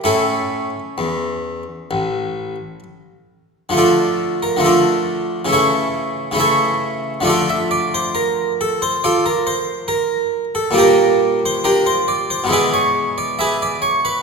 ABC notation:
X:1
M:4/4
L:1/16
Q:1/4=68
K:Dm
V:1 name="Harpsichord"
[^CEA]12 z4 | [DFA]3 B [DFA]4 [EA^c]4 [Ace]4 | [FAd] e d c B2 A c [FAd] B c2 B3 A | [GBd]3 c [DGB] c d c [^G=Bd] ^c2 d [GBe] d c B |]
V:2 name="Harpsichord" clef=bass
[A,,A,]4 E,,4 A,,,4 z4 | [D,F,A,]4 [D,F,A,]4 [^C,E,A,]4 [C,E,A,E]4 | [D,F,A,D]16 | [B,,G,B,D]8 [=B,,E,^G,E]8 |]